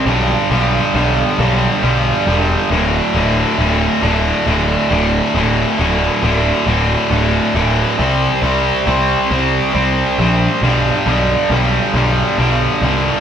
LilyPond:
<<
  \new Staff \with { instrumentName = "Distorted electric guitar" } { \clef bass \time 6/8 \key g \mixolydian \tempo 4. = 45 <g, d g>8 <g, d g>8 <g, d g>8 <g, d g>8 <g, d g>8 <g, d g>8 | <d, a, d>8 <d, a, d>8 <d, a, d>8 <d, a, d>8 <d, a, d>8 <d, a, d>8 | <d, a, d>8 <d, a, d>8 <d, a, d>8 <d, a, d>8 <d, a, d>8 <d, a, d>8 | <c g c'>8 <c g c'>8 <c g c'>8 <c g c'>8 <c g c'>8 <c g c'>8 |
<g, d g>8 <g, d g>8 <g, d g>8 <g, d g>8 <g, d g>8 <g, d g>8 | }
  \new Staff \with { instrumentName = "Picked electric bass" } { \clef bass \time 6/8 \key g \mixolydian b,,8 b,,8 b,,8 b,,8 b,,8 e,,8 | d,,8 d,,8 d,,8 d,,8 d,,8 d,,8 | d,,8 d,,8 d,,8 d,,8 d,,8 d,,8 | c,8 c,8 c,8 c,8 c,8 bes,,8 |
b,,8 b,,8 b,,8 b,,8 b,,8 c,8 | }
>>